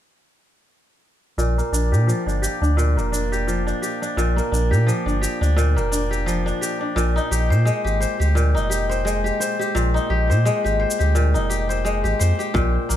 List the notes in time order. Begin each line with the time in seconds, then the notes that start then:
1.38 A#1 A#2, shaker
1.58 A#3, shaker
1.72 A#1 D4, shaker
1.92 A#2 G4, shaker
2.07 F3, shaker
2.26 G1 D4, shaker
2.42 G4, shaker
2.61 D2 D4, shaker
2.77 A#2, shaker
2.96 F1 A#3, shaker
3.12 D4, shaker
3.32 G4, shaker
3.47 F3, shaker
3.67 D4, shaker
3.82 G4, shaker
4.02 D4, shaker
4.17 A#1 A#2, shaker
4.36 A#3, shaker
4.52 A#1 D4, shaker
4.71 A#2 G4, shaker
4.87 F3, shaker
5.06 G1 D4, shaker
5.21 G4, shaker
5.41 D2 D4, shaker
5.56 A#2, shaker
5.76 F1 A#3, shaker
5.92 D4, shaker
6.11 G4, shaker
6.26 F3, shaker
6.46 D4, shaker
6.61 G4, shaker
6.81 D4
6.96 A#1 A#2, shaker
7.16 D#4, shaker
7.31 A#1 G4, shaker
7.50 A#2 C5, shaker
7.65 G#3, shaker
7.84 G#1 G4, shaker
8.01 C5, shaker
8.20 D2 G4, shaker
8.35 A#2, shaker
8.55 F1 D#4, shaker
8.70 G4, shaker
8.89 C5, shaker
9.05 G#3, shaker
9.24 G4, shaker
9.40 C5, shaker
9.59 G4, shaker
9.75 A#1 A#2, shaker
9.94 D#4, shaker
10.10 A#1 G4
10.30 A#2 C5, shaker
10.45 G#3, shaker
10.64 G#1 G4, shaker
10.80 C5
10.91 shaker
10.99 D2 G4, shaker
11.15 A#2, shaker
11.34 F1 D#4, shaker
11.50 G4, shaker
11.69 C5, shaker
11.85 G#3, shaker
12.04 G#1 G4, shaker
12.19 F2 C5, shaker
12.39 G4, shaker
12.54 A#1 A#2, kick, shaker
12.89 A#1 A#3, shaker